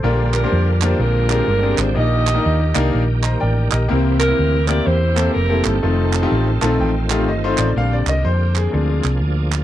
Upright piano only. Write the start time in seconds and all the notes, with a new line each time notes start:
Already playing: A4 C5
0.04 A#2 A#3 D4 F4 G4 A#4
0.43 A#3 D4 F4 G4 C5
0.82 A#3 D4 F4 G4 A#4
0.99 A#2
1.29 C4 D4 G4 G#4 A#4
1.63 C4 D4 G4 G#4 A#4
1.94 A#2 A#3 D4 D#4 G4 A#4
2.34 A#3 D4 D#4 G4 A#4
2.74 A#3 D4 D#4 G4 A#4
3.23 C5 D#5 A#5
3.40 A#4 D5 G5
3.71 G4 A#4 D#5
3.88 C3 A#3 C4 E4 G4 A#4
4.28 A#3 C4 E4 G4 A#4
4.68 A#3 C4 E4 G4 A#4
5.15 A#3 C4 E4 G4 A4
5.49 A#3 C4 E4 G4 A4
5.82 A3 C4 D#4 F4 A4
6.22 A3 C4 D#4 F4 G4
6.61 A3 C4 D#4 F4 A4 A5
6.81 G5
7.10 A3 C4 D#4 F4 G4 F5
7.28 D#5
7.44 A3 C4 D#4 F4 C5
7.59 D5
7.76 G3 C4 D4 F5
7.93 D5
8.09 D#5
8.25 C5
8.57 G#4
8.72 G#3 C4 D4